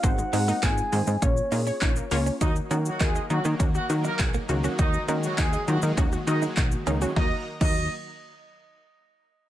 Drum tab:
CC |----------------|----------------|----------------|---x------------|
HH |x-o-x-o-x-o-x-o-|x-x-x-x-x-x-x-x-|x-x-x-x-x-x-x-x-|----------------|
SH |xxxxxxxxxxxxxxxx|xxxxxxxxxxxxxxxx|xxxxxxxxxxxxxxxx|----------------|
CP |----x-------x---|----x-------x---|----x-------x---|----------------|
SD |----------------|----------------|----------------|o---------------|
BD |o---o---o---o---|o---o---o---o---|o---o---o---o---|o--o------------|